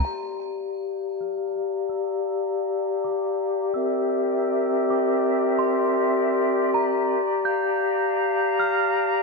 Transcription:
<<
  \new Staff \with { instrumentName = "Synth bell" } { \time 4/4 \key g \dorian \tempo 4 = 130 g'''2~ g'''8 f'''8 r4 | e'''2~ e'''8 d'''8 r4 | e'''2~ e'''8 d'''8 r4 | c'''2~ c'''8 bes''4. |
g'''2~ g'''8 f'''8 r4 | }
  \new Staff \with { instrumentName = "Flute section" } { \time 4/4 \key g \dorian << { <g' f'' a'' bes''>1~ | <g' f'' a'' bes''>1 | <c' bes' e''>1~ | <c' bes' e''>1 |
<f'' a'' bes''>1 | } \\ { d''1~ | d''1~ | d''1~ | d''1~ |
d''1 | } >> }
>>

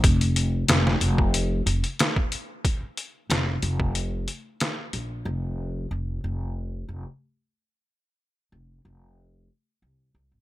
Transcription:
<<
  \new Staff \with { instrumentName = "Upright bass" } { \clef bass \time 4/4 \key c \phrygian \tempo 4 = 92 f,,4 f,,8 f,,4 f,,16 r4 r16 | r4 f,,8 f,,4 r4 bes,,8 | f,,4 f,,8 f,,4 f,,16 r4 r16 | r4 f,,8 f,,4 r8 c,8 c,16 aes,,16 | }
  \new DrumStaff \with { instrumentName = "Drums" } \drummode { \time 4/4 <hh bd>16 hh16 hh8 <hh sn>16 sn16 hh16 bd16 hh8 hh16 hh16 <hh sn>16 bd16 hh8 | <hh bd>8 hh8 <hh sn>8 hh16 bd16 hh8 hh8 <hh sn>8 hh8 | r4 r4 r4 r4 | r4 r4 r4 r4 | }
>>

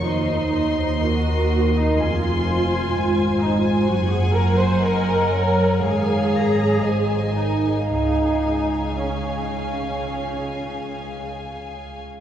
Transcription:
<<
  \new Staff \with { instrumentName = "Violin section" } { \time 4/4 \key des \major \tempo 4 = 60 c'''2 c'''4 aes''4~ | aes''2 aes''8 bes''8 aes''4 | aes''1 | }
  \new Staff \with { instrumentName = "Violin section" } { \time 4/4 \key des \major << { ees''4 ees''4 aes''2 | ges''2 f''4 ees''4 | f''1 | } \\ { c''8 c''8 bes'4 aes'8 c''4.~ | c''4 ees''8 des''8 des''4 c''8 bes'8 | aes'1 | } >> }
  \new Staff \with { instrumentName = "Viola section" } { \time 4/4 \key des \major ees'4 ges'8. ees'16 f'4. ees'16 f'16 | ges'16 aes'16 bes'16 c''16 bes'4 aes'4. ees'8 | ees'4 des'2 r4 | }
  \new Staff \with { instrumentName = "Cello section" } { \clef bass \time 4/4 \key des \major ees,2 f,4 aes,4 | ges,2 aes,4 aes,4 | des1 | }
  \new Staff \with { instrumentName = "Double bass section" } { \clef bass \time 4/4 \key des \major ees,2 f,,4 aes,,4 | ges,,2 aes,,4 aes,,4 | des,1 | }
>>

